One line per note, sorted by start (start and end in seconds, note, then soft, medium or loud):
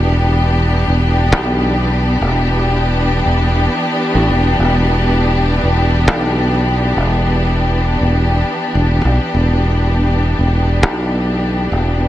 0.00 0.85 E1 medium
0.00 12.08 E3 medium
0.00 12.08 B3 medium
0.00 12.08 D4 medium
0.00 12.08 G4 medium
0.88 1.32 E1 medium
1.32 2.19 B1 medium
2.21 3.23 E1 medium
3.26 3.67 E1 medium
4.15 4.28 A1 loud
4.29 4.56 E1 medium
4.59 5.61 E1 medium
5.63 6.08 E1 medium
6.08 6.94 B1 medium
6.97 7.98 E1 medium
8.01 8.43 E1 medium
8.75 9.01 E1 medium
9.05 9.18 B1 medium
9.35 10.36 E1 medium
10.39 10.83 E1 medium
10.83 11.69 B1 medium
11.72 12.08 E1 medium